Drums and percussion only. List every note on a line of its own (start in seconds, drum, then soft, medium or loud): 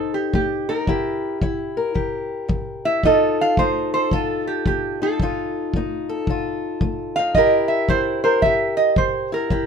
0.34 kick medium
0.87 kick medium
1.42 kick medium
1.96 kick medium
2.49 kick medium
3.03 kick medium
3.57 kick medium
4.11 kick medium
4.66 kick medium
5.20 kick medium
5.74 kick medium
6.27 kick medium
6.81 kick medium
7.35 kick medium
7.89 kick medium
8.42 kick medium
8.96 kick medium
9.50 kick medium